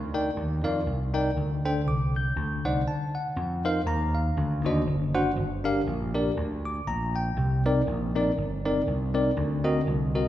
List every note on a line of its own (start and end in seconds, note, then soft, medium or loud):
0.00 0.29 D2 medium
0.00 0.10 C3 medium
0.14 0.30 D#4 medium
0.14 0.30 A#4 medium
0.14 0.30 D5 medium
0.14 0.30 G5 medium
0.36 0.60 D#2 medium
0.64 0.83 F2 medium
0.64 0.79 D#4 medium
0.64 0.80 A#4 medium
0.64 0.80 D5 medium
0.64 0.80 F5 medium
0.86 1.29 C2 medium
1.14 1.29 D#4 medium
1.14 1.30 A#4 medium
1.14 1.30 D5 medium
1.14 1.30 G5 medium
1.36 1.86 D2 medium
1.36 2.11 D3 medium
1.65 1.80 D4 medium
1.65 1.80 A4 medium
1.65 1.81 C5 medium
1.65 1.80 G5 medium
1.86 2.29 C2 loud
1.86 2.14 D6 medium
2.16 2.63 G6 medium
2.36 2.60 D2 medium
2.36 3.11 D3 medium
2.65 2.83 C2 medium
2.65 2.81 D#4 medium
2.65 2.81 C5 medium
2.65 2.81 D5 medium
2.65 2.80 F#5 medium
2.88 3.14 A5 medium
3.15 3.62 F#5 medium
3.36 3.79 F2 loud
3.65 3.80 D#4 medium
3.65 3.80 A#4 medium
3.65 3.80 C5 medium
3.65 3.81 F5 medium
3.86 4.29 D#2 loud
3.86 4.14 A#5 medium
4.15 4.62 F5 medium
4.37 4.61 D2 loud
4.37 5.11 D3 medium
4.64 4.83 D#2 loud
4.64 4.81 D4 medium
4.64 4.81 F#4 medium
4.64 4.81 C5 medium
4.64 4.81 D#5 medium
4.87 5.29 F#1 loud
5.15 5.30 D4 medium
5.15 5.30 F#4 medium
5.15 5.30 C5 medium
5.15 5.30 F#5 loud
5.36 5.79 G1 loud
5.36 6.11 G2 medium
5.64 5.80 D4 medium
5.64 5.80 G4 medium
5.64 5.80 A#4 medium
5.64 5.81 F5 medium
5.87 6.29 A#1 loud
6.14 6.30 D4 medium
6.14 6.30 G4 medium
6.14 6.30 A#4 medium
6.14 6.31 D5 medium
6.37 6.79 D2 medium
6.65 6.86 D6 medium
6.87 7.29 A#1 medium
6.87 7.14 A#5 medium
7.16 7.63 G5 medium
7.37 7.79 C2 loud
7.37 8.11 C3 medium
7.66 7.81 C4 medium
7.66 7.81 D#4 medium
7.66 7.81 A#4 medium
7.66 7.81 D5 loud
7.87 8.29 A#1 loud
8.15 8.31 C4 medium
8.15 8.31 D#4 medium
8.15 8.31 A#4 medium
8.15 8.31 D5 medium
8.37 8.80 G1 medium
8.65 8.81 C4 medium
8.65 8.81 D#4 medium
8.65 8.81 A#4 medium
8.65 8.81 D5 medium
8.87 9.29 C2 loud
9.14 9.30 C4 medium
9.14 9.30 D#4 medium
9.14 9.30 A#4 medium
9.14 9.30 D5 medium
9.37 9.79 D2 loud
9.37 10.11 D3 medium
9.64 9.80 C4 medium
9.64 9.80 F#4 medium
9.64 9.80 A#4 medium
9.64 9.80 D#5 medium
9.87 10.28 C2 medium
10.15 10.28 C4 medium
10.15 10.28 F#4 medium
10.15 10.28 A#4 medium
10.15 10.28 D#5 medium